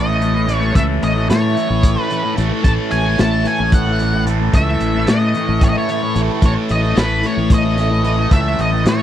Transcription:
Already playing: A1 A2 E3 A3 C#4 A4 C#5 D#5
0.06 E3 A3
0.20 A2 E3 A3, closed hi-hat
0.34 muted distorted electric guitar stroke
0.46 A2 E3 A3, closed hi-hat
0.57 A3 C#5
0.64 E3
0.73 C#2 A2 E3 A3 E5, kick, closed hi-hat
1.03 A1 D#5, closed hi-hat
1.14 E3 A3
1.27 A2 E3 A3 C#5, snare, closed hi-hat
1.54 A2 E3 A3, closed hi-hat
1.68 A1, muted distorted electric guitar stroke
1.83 kick, closed hi-hat
1.95 E3 A3
2.02 B4
2.08 A2 E3 A3, closed hi-hat
2.23 muted distorted electric guitar stroke
2.34 A1 A2 E3 A3, closed hi-hat
2.49 E3 A3
2.62 A1 A2 E3 A3 A5, kick, closed hi-hat
2.91 A1 G#5, closed hi-hat
3.03 E3 A3
3.17 A1 A2 E3 A3 A5, snare, closed hi-hat
3.44 A2 E3 A3 G#5, closed hi-hat
3.59 A1, muted distorted electric guitar stroke
3.72 F#5, kick, closed hi-hat
3.86 E3 A3
3.99 A2 E3 A3, closed hi-hat
4.14 muted distorted electric guitar stroke
4.26 A2 E3 A3, closed hi-hat
4.40 E3 A3
4.53 C#2 A2 E3 A3 E5, kick, closed hi-hat
4.80 A1, closed hi-hat
4.94 E3 A3
5.07 A2 E3 A3 D#5, snare, closed hi-hat
5.33 A2 E3 A3, closed hi-hat
5.48 A1, muted distorted electric guitar stroke
5.61 C#5, kick, closed hi-hat
5.69 D#5
5.74 E3 A3 C#5
5.88 A2 E3 A3, closed hi-hat
6.02 muted distorted electric guitar stroke
6.15 A1 A2 E3 A3, closed hi-hat
6.29 E3 A3
6.42 A1 A2 E3 A3, kick, closed hi-hat
6.46 C#5
6.69 A1 D#5, closed hi-hat
6.81 E3 A3
6.96 A1 A2 E3 A3 B4, snare, closed hi-hat
7.22 A2 E3 A3, closed hi-hat
7.26 C#5
7.37 A1, muted distorted electric guitar stroke
7.50 kick, closed hi-hat
7.54 D#5
7.62 E3 A3
7.75 A2 E3 A3, closed hi-hat
7.79 snare
7.91 muted distorted electric guitar stroke
8.02 A2 E3 A3, closed hi-hat
8.16 E3 A3
8.29 C#2 A2 E3 A3 E5, kick, closed hi-hat
8.59 A1 D#5, closed hi-hat
8.71 E3 A3
8.84 A2 E3 A3, snare, closed hi-hat
8.88 C#5

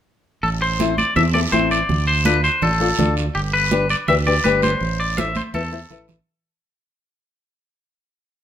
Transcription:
0.43 A1 A4, high conga, long guiro
0.62 C5
0.80 C4 E4 A4, high conga, short guiro
0.98 D5, high conga, short guiro
1.16 E2 C4 E4 A4 E5, low conga, long guiro
1.34 C4 E4 A4 D5, high conga
1.52 A1 C4 E4 A4 C5, high conga, short guiro
1.71 D5, short guiro
1.89 D2, high conga, low conga, long guiro
2.07 C5
2.25 D4 F4 A4 B4, high conga, short guiro
2.44 C5, short guiro
2.62 A1 D4 F4 A4, low conga, long guiro
2.80 D4 F4 A4, high conga
2.98 D2 D4 F4 A4, high conga, low conga, short guiro
3.17 short guiro
3.35 G1 G4, high conga, long guiro
3.53 B4
3.71 D4 G4 B4, high conga, short guiro
3.90 D5, short guiro
4.08 D2 D4 G4 B4 E5, low conga, long guiro
4.26 D4 G4 B4 D5, high conga
4.44 G1 D4 G4 B4, high conga, short guiro
4.62 C5, high conga, short guiro
4.80 A1, high conga, long guiro
5.00 D5
5.17 E4 A4 C5 E5, high conga, short guiro
5.35 C5, high conga, short guiro
5.54 E2 E4 A4 B4, high conga, long guiro
5.72 E4 A4 C5
5.90 E4 A4 B4, low conga, short guiro
6.08 low conga, short guiro

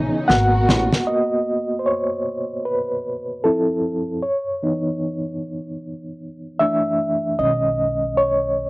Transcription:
Already playing: C#3 E3 B3 C#4 D#4 G#4 G#5
0.28 G#1 B2 G#3 A#3 B3 F#4 A#4 F#5, snare
0.69 A1, snare
0.93 snare
1.07 A#3 B3 F#4 D#5
1.79 C5
1.86 C#5
2.65 B4
3.44 F3 C4 E4 A4
4.22 C#5
4.63 E3 B3 D#4
6.59 E3 A3 D4 E5
7.39 B1 D#3 G#3 C#4 D#5
8.17 C#5

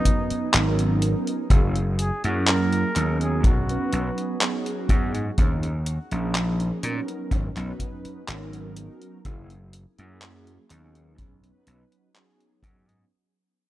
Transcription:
Already playing: F#3 B3 C#4 D#4 B4
0.05 kick, closed hi-hat
0.30 muted slap bass stroke, closed hi-hat
0.53 G#1 F#3 B3 C#4 D#4 A#4, clap, closed hi-hat
0.79 closed hi-hat
1.02 closed hi-hat
1.27 closed hi-hat
1.50 F#1 F#3 A#3 E4 G#4, kick, closed hi-hat
1.76 closed hi-hat
1.99 G#4, closed hi-hat
2.23 F#2 F#3 A#3 C#4 E4 F#4 G#4, closed hi-hat
2.47 A#4, clap, closed hi-hat
2.72 closed hi-hat
2.95 D#2 F#3 B3 C#4 D#4 G#4, clap, closed hi-hat
3.21 G#4, closed hi-hat
3.44 B1 F#4, kick, closed hi-hat
3.69 F#3 B3 C#4 D#4 B4, closed hi-hat
3.93 B1, closed hi-hat
4.18 closed hi-hat
4.40 F#3 B3 C#4 D#4 G#4, clap, closed hi-hat
4.66 closed hi-hat
4.89 F#2, kick, closed hi-hat
5.15 G#2, closed hi-hat
5.37 D#2 F3 A#3 C#4 D#4 G#4, kick, closed hi-hat
5.63 closed hi-hat
5.86 closed hi-hat
6.11 A#1 F3 A#3 C#4 D#4 G#4, closed hi-hat
6.35 clap, closed hi-hat
6.60 closed hi-hat
6.82 A#2 F#3 B3 C#4 D#4 A#4, closed hi-hat
7.08 closed hi-hat
7.31 G#1, kick, closed hi-hat
7.56 B1 F#3 B3 C#4 D#4 B4, clap, closed hi-hat
7.80 kick, closed hi-hat
8.05 muted slap bass stroke, closed hi-hat
8.27 G#1 F#3 B3 C#4 D#4 A#4, clap, closed hi-hat
8.53 closed hi-hat
8.77 closed hi-hat
9.02 closed hi-hat
9.24 F#1 F#3 A#3 C#4 E4 G#4, kick, closed hi-hat
9.50 closed hi-hat
9.73 closed hi-hat
9.98 F#2 F#3 A#3 C#4 E4 G#4, closed hi-hat
10.22 clap, closed hi-hat
10.47 closed hi-hat
10.69 D#2 F#3 B3 C#4 D#4 G#4, clap, closed hi-hat
10.95 closed hi-hat
11.18 B1, kick, closed hi-hat
11.42 F#3 B3 C#4 D#4 B4, closed hi-hat
11.67 B1, closed hi-hat
11.92 closed hi-hat
12.14 F#3 B3 C#4 D#4 G#4, clap, closed hi-hat
12.41 closed hi-hat
12.63 F#2, kick, closed hi-hat
12.89 G#2, closed hi-hat

